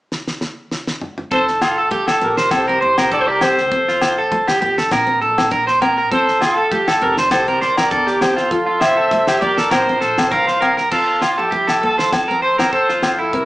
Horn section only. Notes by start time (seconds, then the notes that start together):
1.32 A4 C5
1.62 F4 A4
2.23 G4 A#4
2.52 G4 C5
3.12 G4 D5
3.20 C5
3.26 A#4 D5
3.41 A4 C5
6.13 A4 C5
6.42 F4 A4
7.02 G4 A#4
7.32 G4 C5
7.60 A#4 D5
8.21 A4 C5
8.50 F4 A4
8.80 C5 E5
9.41 A#4 D5
9.72 F4 C5
10.32 C5 F5
10.92 C4 F4
11.38 E4 G4
11.82 F4 A4
12.42 A4 C5
12.72 A4 C5
13.19 F4 A4
13.33 G4 A#4